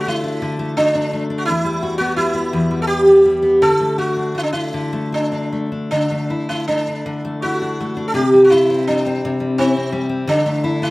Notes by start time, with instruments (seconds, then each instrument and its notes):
Already playing: steel-string acoustic guitar D3 D4 F#4
0.01 sitar F#4
0.07 steel-string acoustic guitar A3, sitar E4
0.23 steel-string acoustic guitar D4
0.42 steel-string acoustic guitar D3
0.59 steel-string acoustic guitar A3
0.77 sitar D4, steel-string acoustic guitar F#4
0.95 steel-string acoustic guitar D4
1.13 steel-string acoustic guitar A3
1.30 steel-string acoustic guitar D4
1.38 sitar F#4
1.45 steel-string acoustic guitar E2, sitar E4
1.64 steel-string acoustic guitar G3
1.83 steel-string acoustic guitar F#4
1.98 steel-string acoustic guitar B3, sitar F#4
2.16 steel-string acoustic guitar G3, sitar E4
2.34 steel-string acoustic guitar B3
2.53 steel-string acoustic guitar E2
2.71 steel-string acoustic guitar G3
2.82 sitar A4
2.87 sitar G4
3.07 steel-string acoustic guitar B3
3.25 steel-string acoustic guitar G3
3.42 steel-string acoustic guitar B3
3.62 steel-string acoustic guitar D3, sitar A4
3.80 steel-string acoustic guitar A3
3.98 steel-string acoustic guitar F#4, sitar F#4
4.16 steel-string acoustic guitar D4
4.35 steel-string acoustic guitar A3, sitar E4
4.43 sitar D4
4.53 steel-string acoustic guitar D4, sitar E4
4.74 steel-string acoustic guitar D3
4.93 steel-string acoustic guitar A3
5.12 sitar D4, steel-string acoustic guitar F#4
5.32 steel-string acoustic guitar D4
5.52 steel-string acoustic guitar A3
5.72 steel-string acoustic guitar D4
5.91 steel-string acoustic guitar D3, sitar D4
6.11 steel-string acoustic guitar A3
6.30 steel-string acoustic guitar E4
6.49 steel-string acoustic guitar D4, sitar E4
6.68 steel-string acoustic guitar A3, sitar D4
6.88 steel-string acoustic guitar D4
7.06 steel-string acoustic guitar D3
7.25 steel-string acoustic guitar A3
7.42 steel-string acoustic guitar E4, sitar F#4
7.62 steel-string acoustic guitar D4
7.80 steel-string acoustic guitar A3
7.97 steel-string acoustic guitar D4
8.08 sitar A4
8.14 steel-string acoustic guitar C3, sitar G4
8.34 steel-string acoustic guitar G3
8.44 sitar F#4
8.50 sitar E4, steel-string acoustic guitar E4
8.70 steel-string acoustic guitar C4
8.87 steel-string acoustic guitar G3, sitar D4
9.06 steel-string acoustic guitar C4
9.25 steel-string acoustic guitar C3
9.40 steel-string acoustic guitar G3
9.58 sitar C4, steel-string acoustic guitar E4
9.77 steel-string acoustic guitar C4
9.92 steel-string acoustic guitar G3
10.09 steel-string acoustic guitar C4
10.27 steel-string acoustic guitar D3, sitar D4
10.46 steel-string acoustic guitar A3
10.64 steel-string acoustic guitar E4
10.82 steel-string acoustic guitar D4, sitar E4